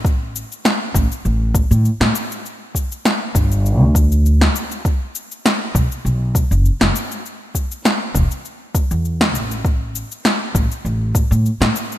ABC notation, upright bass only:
X:1
M:4/4
L:1/16
Q:"Swing 16ths" 1/4=100
K:Edor
V:1 name="Upright bass" clef=bass
A,,,2 z4 A,,, z A,,,2 z A,, z A,, z2 | z6 G,,,3 D,,4 z3 | z6 B,,, z B,,,2 z F,,, z F,,, z2 | z6 E,,, z4 E,,3 A,,,2- |
A,,,2 z4 A,,, z A,,,2 z A,, z A,, z2 |]